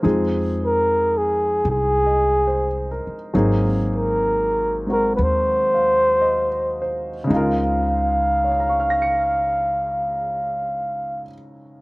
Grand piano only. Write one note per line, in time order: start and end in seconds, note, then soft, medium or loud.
0.00 3.32 F3 soft
0.00 3.33 G#3 soft
0.00 3.33 C4 soft
0.00 3.33 D#4 soft
0.00 0.20 C5 soft
0.04 3.33 G#4 medium
2.06 2.65 D#5 soft
2.47 3.15 C5 soft
2.91 3.52 A#4 soft
3.34 7.30 F#3 soft
3.34 7.30 A#3 soft
3.34 4.87 C4 soft
3.34 7.28 D#4 medium
3.34 7.31 G#4 medium
4.87 7.26 G#3 soft
4.87 7.30 C4 soft
4.87 7.31 F#4 soft
5.74 6.46 F5 soft
6.21 7.09 D#5 soft
6.82 7.59 C5 soft
7.24 11.21 C#3 medium
7.24 11.24 G#3 medium
7.30 11.27 D#4 soft
7.30 11.30 F4 soft
7.36 11.33 A#4 medium
8.44 11.81 C#5 soft
8.52 11.81 F5 soft
8.60 11.81 A#5 soft
8.69 11.81 C#6 soft
8.80 11.81 F6 soft
8.90 11.81 A#6 soft
9.02 11.81 C#7 soft